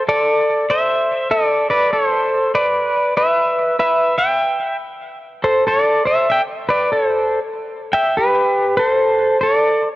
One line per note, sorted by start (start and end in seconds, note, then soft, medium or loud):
0.08 0.65 A4 medium
0.08 0.71 D5 loud
0.70 1.28 C5 medium
0.70 1.33 E5 medium
1.31 1.67 A4 medium
1.31 1.69 D5 medium
1.70 1.92 B4 medium
1.70 1.94 D5 medium
1.93 2.51 A4 medium
1.93 2.54 C5 medium
2.55 3.13 B4 medium
2.55 3.19 D5 medium
3.17 3.76 B4 medium
3.17 3.78 E5 medium
3.79 4.15 B4 medium
3.79 4.16 E5 medium
4.18 4.76 E5 medium
4.18 4.76 G5 medium
5.44 5.65 A4 medium
5.44 5.66 C5 medium
5.67 6.03 A4 medium
5.67 6.06 D5 medium
6.05 6.27 C5 medium
6.05 6.29 E5 medium
6.30 6.40 E5 medium
6.30 6.42 G5 medium
6.69 6.90 B4 medium
6.69 6.93 D5 medium
6.92 7.38 A4 medium
6.92 7.39 C5 medium
7.93 8.15 E5 medium
7.93 8.17 G5 medium
8.17 8.75 G4 medium
8.17 8.74 B4 medium
8.77 9.37 A4 medium
8.77 8.88 B4 medium
8.88 9.42 C5 medium
9.41 9.89 A4 medium
9.41 9.87 D5 medium